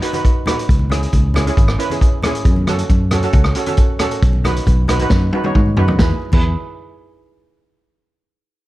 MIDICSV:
0, 0, Header, 1, 4, 480
1, 0, Start_track
1, 0, Key_signature, 4, "major"
1, 0, Tempo, 442152
1, 749, Time_signature, 4, 2, 24, 8
1, 9418, End_track
2, 0, Start_track
2, 0, Title_t, "Steel pan"
2, 0, Program_c, 0, 114
2, 21, Note_on_c, 0, 63, 84
2, 26, Note_on_c, 0, 66, 72
2, 36, Note_on_c, 0, 71, 88
2, 98, Note_off_c, 0, 63, 0
2, 101, Note_off_c, 0, 66, 0
2, 106, Note_off_c, 0, 71, 0
2, 139, Note_on_c, 0, 63, 84
2, 151, Note_on_c, 0, 66, 74
2, 158, Note_on_c, 0, 71, 94
2, 361, Note_off_c, 0, 63, 0
2, 367, Note_off_c, 0, 66, 0
2, 371, Note_off_c, 0, 71, 0
2, 508, Note_on_c, 0, 63, 81
2, 522, Note_on_c, 0, 66, 77
2, 525, Note_on_c, 0, 71, 92
2, 749, Note_off_c, 0, 63, 0
2, 756, Note_off_c, 0, 66, 0
2, 757, Note_off_c, 0, 71, 0
2, 977, Note_on_c, 0, 61, 76
2, 990, Note_on_c, 0, 64, 75
2, 998, Note_on_c, 0, 68, 88
2, 1273, Note_off_c, 0, 61, 0
2, 1280, Note_off_c, 0, 64, 0
2, 1284, Note_off_c, 0, 68, 0
2, 1466, Note_on_c, 0, 61, 78
2, 1474, Note_on_c, 0, 64, 78
2, 1480, Note_on_c, 0, 68, 91
2, 1542, Note_off_c, 0, 61, 0
2, 1546, Note_off_c, 0, 64, 0
2, 1550, Note_off_c, 0, 68, 0
2, 1595, Note_on_c, 0, 61, 90
2, 1605, Note_on_c, 0, 64, 85
2, 1608, Note_on_c, 0, 68, 95
2, 1810, Note_off_c, 0, 61, 0
2, 1815, Note_off_c, 0, 64, 0
2, 1817, Note_off_c, 0, 68, 0
2, 1942, Note_on_c, 0, 61, 79
2, 1946, Note_on_c, 0, 64, 78
2, 1955, Note_on_c, 0, 71, 91
2, 2021, Note_off_c, 0, 61, 0
2, 2023, Note_off_c, 0, 64, 0
2, 2027, Note_off_c, 0, 71, 0
2, 2068, Note_on_c, 0, 61, 82
2, 2078, Note_on_c, 0, 64, 78
2, 2081, Note_on_c, 0, 68, 86
2, 2287, Note_off_c, 0, 61, 0
2, 2292, Note_off_c, 0, 64, 0
2, 2294, Note_off_c, 0, 68, 0
2, 2444, Note_on_c, 0, 61, 88
2, 2446, Note_on_c, 0, 64, 78
2, 2457, Note_on_c, 0, 68, 99
2, 2678, Note_off_c, 0, 61, 0
2, 2679, Note_off_c, 0, 64, 0
2, 2685, Note_off_c, 0, 68, 0
2, 2908, Note_on_c, 0, 61, 81
2, 2916, Note_on_c, 0, 66, 74
2, 2920, Note_on_c, 0, 69, 98
2, 3200, Note_off_c, 0, 61, 0
2, 3204, Note_off_c, 0, 66, 0
2, 3206, Note_off_c, 0, 69, 0
2, 3391, Note_on_c, 0, 61, 81
2, 3395, Note_on_c, 0, 66, 76
2, 3404, Note_on_c, 0, 69, 89
2, 3466, Note_off_c, 0, 61, 0
2, 3468, Note_off_c, 0, 66, 0
2, 3473, Note_off_c, 0, 69, 0
2, 3515, Note_on_c, 0, 61, 88
2, 3517, Note_on_c, 0, 66, 85
2, 3527, Note_on_c, 0, 69, 99
2, 3731, Note_off_c, 0, 61, 0
2, 3732, Note_off_c, 0, 66, 0
2, 3737, Note_off_c, 0, 69, 0
2, 3860, Note_on_c, 0, 61, 83
2, 3870, Note_on_c, 0, 66, 79
2, 3879, Note_on_c, 0, 69, 86
2, 3941, Note_off_c, 0, 61, 0
2, 3946, Note_off_c, 0, 66, 0
2, 3950, Note_off_c, 0, 69, 0
2, 3985, Note_on_c, 0, 61, 89
2, 3994, Note_on_c, 0, 66, 76
2, 4002, Note_on_c, 0, 69, 91
2, 4206, Note_off_c, 0, 61, 0
2, 4211, Note_off_c, 0, 66, 0
2, 4215, Note_off_c, 0, 69, 0
2, 4338, Note_on_c, 0, 61, 94
2, 4349, Note_on_c, 0, 66, 76
2, 4354, Note_on_c, 0, 69, 101
2, 4586, Note_off_c, 0, 61, 0
2, 4591, Note_off_c, 0, 66, 0
2, 4594, Note_off_c, 0, 69, 0
2, 4823, Note_on_c, 0, 63, 83
2, 4829, Note_on_c, 0, 66, 79
2, 4840, Note_on_c, 0, 71, 95
2, 5118, Note_off_c, 0, 63, 0
2, 5121, Note_off_c, 0, 66, 0
2, 5126, Note_off_c, 0, 71, 0
2, 5299, Note_on_c, 0, 63, 85
2, 5312, Note_on_c, 0, 66, 78
2, 5319, Note_on_c, 0, 71, 96
2, 5380, Note_off_c, 0, 63, 0
2, 5387, Note_off_c, 0, 66, 0
2, 5390, Note_off_c, 0, 71, 0
2, 5434, Note_on_c, 0, 63, 94
2, 5441, Note_on_c, 0, 66, 82
2, 5451, Note_on_c, 0, 71, 97
2, 5651, Note_off_c, 0, 63, 0
2, 5654, Note_off_c, 0, 66, 0
2, 5659, Note_off_c, 0, 71, 0
2, 5794, Note_on_c, 0, 63, 88
2, 5804, Note_on_c, 0, 66, 82
2, 5808, Note_on_c, 0, 71, 91
2, 5868, Note_off_c, 0, 63, 0
2, 5873, Note_off_c, 0, 66, 0
2, 5875, Note_off_c, 0, 71, 0
2, 5905, Note_on_c, 0, 63, 86
2, 5917, Note_on_c, 0, 66, 75
2, 5925, Note_on_c, 0, 73, 91
2, 6126, Note_off_c, 0, 63, 0
2, 6132, Note_off_c, 0, 66, 0
2, 6136, Note_off_c, 0, 73, 0
2, 6265, Note_on_c, 0, 63, 88
2, 6273, Note_on_c, 0, 66, 84
2, 6285, Note_on_c, 0, 71, 93
2, 6505, Note_off_c, 0, 71, 0
2, 6509, Note_off_c, 0, 63, 0
2, 6513, Note_off_c, 0, 66, 0
2, 6518, Note_on_c, 0, 71, 87
2, 6519, Note_on_c, 0, 68, 69
2, 6521, Note_on_c, 0, 64, 75
2, 6652, Note_off_c, 0, 71, 0
2, 6653, Note_off_c, 0, 68, 0
2, 6654, Note_off_c, 0, 64, 0
2, 6876, Note_on_c, 0, 64, 80
2, 6877, Note_on_c, 0, 68, 73
2, 6880, Note_on_c, 0, 71, 88
2, 7099, Note_off_c, 0, 64, 0
2, 7100, Note_off_c, 0, 68, 0
2, 7101, Note_off_c, 0, 71, 0
2, 9418, End_track
3, 0, Start_track
3, 0, Title_t, "Fingered electric bass"
3, 0, Program_c, 1, 33
3, 748, Note_on_c, 1, 37, 90
3, 1141, Note_off_c, 1, 37, 0
3, 1232, Note_on_c, 1, 37, 86
3, 1623, Note_off_c, 1, 37, 0
3, 1706, Note_on_c, 1, 32, 89
3, 1904, Note_off_c, 1, 32, 0
3, 2659, Note_on_c, 1, 42, 90
3, 3056, Note_off_c, 1, 42, 0
3, 3146, Note_on_c, 1, 42, 83
3, 3540, Note_off_c, 1, 42, 0
3, 3621, Note_on_c, 1, 37, 88
3, 3822, Note_off_c, 1, 37, 0
3, 4585, Note_on_c, 1, 35, 96
3, 4980, Note_off_c, 1, 35, 0
3, 5069, Note_on_c, 1, 35, 93
3, 5462, Note_off_c, 1, 35, 0
3, 5545, Note_on_c, 1, 42, 95
3, 5744, Note_off_c, 1, 42, 0
3, 6028, Note_on_c, 1, 44, 89
3, 6246, Note_off_c, 1, 44, 0
3, 6266, Note_on_c, 1, 42, 86
3, 6485, Note_off_c, 1, 42, 0
3, 6509, Note_on_c, 1, 40, 84
3, 6648, Note_off_c, 1, 40, 0
3, 6871, Note_on_c, 1, 40, 95
3, 7096, Note_off_c, 1, 40, 0
3, 9418, End_track
4, 0, Start_track
4, 0, Title_t, "Drums"
4, 22, Note_on_c, 9, 42, 84
4, 131, Note_off_c, 9, 42, 0
4, 143, Note_on_c, 9, 63, 62
4, 149, Note_on_c, 9, 42, 62
4, 251, Note_off_c, 9, 63, 0
4, 257, Note_off_c, 9, 42, 0
4, 267, Note_on_c, 9, 36, 87
4, 271, Note_on_c, 9, 42, 60
4, 376, Note_off_c, 9, 36, 0
4, 379, Note_off_c, 9, 42, 0
4, 496, Note_on_c, 9, 64, 69
4, 513, Note_on_c, 9, 37, 83
4, 513, Note_on_c, 9, 42, 84
4, 605, Note_off_c, 9, 64, 0
4, 621, Note_off_c, 9, 37, 0
4, 621, Note_off_c, 9, 42, 0
4, 641, Note_on_c, 9, 42, 61
4, 749, Note_off_c, 9, 42, 0
4, 751, Note_on_c, 9, 36, 103
4, 760, Note_on_c, 9, 42, 65
4, 859, Note_off_c, 9, 36, 0
4, 861, Note_on_c, 9, 63, 64
4, 868, Note_off_c, 9, 42, 0
4, 969, Note_off_c, 9, 63, 0
4, 973, Note_on_c, 9, 63, 64
4, 994, Note_on_c, 9, 37, 81
4, 994, Note_on_c, 9, 42, 82
4, 1082, Note_off_c, 9, 63, 0
4, 1103, Note_off_c, 9, 37, 0
4, 1103, Note_off_c, 9, 42, 0
4, 1114, Note_on_c, 9, 42, 63
4, 1222, Note_on_c, 9, 64, 64
4, 1223, Note_off_c, 9, 42, 0
4, 1226, Note_on_c, 9, 36, 78
4, 1226, Note_on_c, 9, 42, 60
4, 1331, Note_off_c, 9, 64, 0
4, 1334, Note_off_c, 9, 42, 0
4, 1335, Note_off_c, 9, 36, 0
4, 1456, Note_on_c, 9, 64, 71
4, 1474, Note_on_c, 9, 37, 78
4, 1474, Note_on_c, 9, 42, 82
4, 1565, Note_off_c, 9, 64, 0
4, 1583, Note_off_c, 9, 37, 0
4, 1583, Note_off_c, 9, 42, 0
4, 1595, Note_on_c, 9, 42, 56
4, 1702, Note_on_c, 9, 63, 63
4, 1704, Note_off_c, 9, 42, 0
4, 1706, Note_on_c, 9, 36, 97
4, 1712, Note_on_c, 9, 42, 58
4, 1810, Note_off_c, 9, 63, 0
4, 1815, Note_off_c, 9, 36, 0
4, 1821, Note_off_c, 9, 42, 0
4, 1825, Note_on_c, 9, 37, 77
4, 1933, Note_off_c, 9, 37, 0
4, 1949, Note_on_c, 9, 42, 80
4, 2058, Note_off_c, 9, 42, 0
4, 2062, Note_on_c, 9, 63, 65
4, 2075, Note_on_c, 9, 42, 54
4, 2171, Note_off_c, 9, 63, 0
4, 2184, Note_off_c, 9, 42, 0
4, 2186, Note_on_c, 9, 36, 87
4, 2193, Note_on_c, 9, 42, 59
4, 2295, Note_off_c, 9, 36, 0
4, 2301, Note_off_c, 9, 42, 0
4, 2415, Note_on_c, 9, 64, 78
4, 2426, Note_on_c, 9, 37, 84
4, 2426, Note_on_c, 9, 42, 77
4, 2524, Note_off_c, 9, 64, 0
4, 2535, Note_off_c, 9, 37, 0
4, 2535, Note_off_c, 9, 42, 0
4, 2548, Note_on_c, 9, 42, 57
4, 2657, Note_off_c, 9, 42, 0
4, 2663, Note_on_c, 9, 36, 106
4, 2664, Note_on_c, 9, 42, 58
4, 2771, Note_off_c, 9, 36, 0
4, 2773, Note_off_c, 9, 42, 0
4, 2782, Note_on_c, 9, 63, 80
4, 2891, Note_off_c, 9, 63, 0
4, 2896, Note_on_c, 9, 63, 69
4, 2901, Note_on_c, 9, 37, 82
4, 2901, Note_on_c, 9, 42, 74
4, 3004, Note_off_c, 9, 63, 0
4, 3010, Note_off_c, 9, 37, 0
4, 3010, Note_off_c, 9, 42, 0
4, 3023, Note_on_c, 9, 42, 60
4, 3132, Note_off_c, 9, 42, 0
4, 3142, Note_on_c, 9, 42, 57
4, 3144, Note_on_c, 9, 36, 76
4, 3146, Note_on_c, 9, 64, 71
4, 3251, Note_off_c, 9, 42, 0
4, 3252, Note_off_c, 9, 36, 0
4, 3255, Note_off_c, 9, 64, 0
4, 3376, Note_on_c, 9, 64, 72
4, 3377, Note_on_c, 9, 37, 84
4, 3377, Note_on_c, 9, 42, 84
4, 3485, Note_off_c, 9, 37, 0
4, 3485, Note_off_c, 9, 42, 0
4, 3485, Note_off_c, 9, 64, 0
4, 3501, Note_on_c, 9, 42, 55
4, 3609, Note_off_c, 9, 42, 0
4, 3610, Note_on_c, 9, 42, 56
4, 3617, Note_on_c, 9, 63, 63
4, 3620, Note_on_c, 9, 36, 110
4, 3719, Note_off_c, 9, 42, 0
4, 3726, Note_off_c, 9, 63, 0
4, 3729, Note_off_c, 9, 36, 0
4, 3736, Note_on_c, 9, 37, 85
4, 3845, Note_off_c, 9, 37, 0
4, 3851, Note_on_c, 9, 42, 77
4, 3960, Note_off_c, 9, 42, 0
4, 3974, Note_on_c, 9, 42, 63
4, 3984, Note_on_c, 9, 63, 59
4, 4083, Note_off_c, 9, 42, 0
4, 4091, Note_on_c, 9, 42, 67
4, 4093, Note_off_c, 9, 63, 0
4, 4101, Note_on_c, 9, 36, 84
4, 4200, Note_off_c, 9, 42, 0
4, 4210, Note_off_c, 9, 36, 0
4, 4334, Note_on_c, 9, 37, 84
4, 4334, Note_on_c, 9, 42, 88
4, 4339, Note_on_c, 9, 64, 59
4, 4443, Note_off_c, 9, 37, 0
4, 4443, Note_off_c, 9, 42, 0
4, 4447, Note_off_c, 9, 64, 0
4, 4461, Note_on_c, 9, 42, 62
4, 4570, Note_off_c, 9, 42, 0
4, 4584, Note_on_c, 9, 42, 71
4, 4587, Note_on_c, 9, 36, 119
4, 4693, Note_off_c, 9, 42, 0
4, 4695, Note_off_c, 9, 36, 0
4, 4700, Note_on_c, 9, 63, 61
4, 4809, Note_off_c, 9, 63, 0
4, 4825, Note_on_c, 9, 63, 58
4, 4825, Note_on_c, 9, 64, 56
4, 4830, Note_on_c, 9, 37, 77
4, 4830, Note_on_c, 9, 42, 81
4, 4934, Note_off_c, 9, 63, 0
4, 4934, Note_off_c, 9, 64, 0
4, 4939, Note_off_c, 9, 37, 0
4, 4939, Note_off_c, 9, 42, 0
4, 4954, Note_on_c, 9, 42, 68
4, 5059, Note_on_c, 9, 64, 57
4, 5063, Note_off_c, 9, 42, 0
4, 5068, Note_on_c, 9, 36, 86
4, 5069, Note_on_c, 9, 42, 61
4, 5168, Note_off_c, 9, 64, 0
4, 5176, Note_off_c, 9, 36, 0
4, 5177, Note_off_c, 9, 42, 0
4, 5296, Note_on_c, 9, 64, 63
4, 5306, Note_on_c, 9, 37, 84
4, 5306, Note_on_c, 9, 42, 85
4, 5404, Note_off_c, 9, 64, 0
4, 5414, Note_off_c, 9, 37, 0
4, 5414, Note_off_c, 9, 42, 0
4, 5419, Note_on_c, 9, 42, 62
4, 5424, Note_on_c, 9, 63, 58
4, 5527, Note_off_c, 9, 42, 0
4, 5532, Note_off_c, 9, 63, 0
4, 5534, Note_on_c, 9, 38, 60
4, 5537, Note_on_c, 9, 63, 65
4, 5544, Note_on_c, 9, 36, 103
4, 5642, Note_off_c, 9, 38, 0
4, 5645, Note_off_c, 9, 63, 0
4, 5653, Note_off_c, 9, 36, 0
4, 5782, Note_on_c, 9, 48, 75
4, 5891, Note_off_c, 9, 48, 0
4, 5904, Note_on_c, 9, 63, 63
4, 5909, Note_on_c, 9, 48, 66
4, 6012, Note_off_c, 9, 63, 0
4, 6018, Note_off_c, 9, 48, 0
4, 6026, Note_on_c, 9, 36, 80
4, 6026, Note_on_c, 9, 47, 87
4, 6134, Note_off_c, 9, 47, 0
4, 6135, Note_off_c, 9, 36, 0
4, 6143, Note_on_c, 9, 63, 57
4, 6251, Note_off_c, 9, 63, 0
4, 6260, Note_on_c, 9, 64, 66
4, 6262, Note_on_c, 9, 43, 87
4, 6368, Note_off_c, 9, 64, 0
4, 6371, Note_off_c, 9, 43, 0
4, 6384, Note_on_c, 9, 43, 91
4, 6386, Note_on_c, 9, 64, 69
4, 6493, Note_off_c, 9, 43, 0
4, 6495, Note_off_c, 9, 64, 0
4, 6500, Note_on_c, 9, 38, 89
4, 6505, Note_on_c, 9, 63, 80
4, 6507, Note_on_c, 9, 36, 100
4, 6609, Note_off_c, 9, 38, 0
4, 6614, Note_off_c, 9, 63, 0
4, 6615, Note_off_c, 9, 36, 0
4, 6859, Note_on_c, 9, 63, 83
4, 6866, Note_on_c, 9, 49, 91
4, 6872, Note_on_c, 9, 36, 108
4, 6967, Note_off_c, 9, 63, 0
4, 6974, Note_off_c, 9, 49, 0
4, 6981, Note_off_c, 9, 36, 0
4, 9418, End_track
0, 0, End_of_file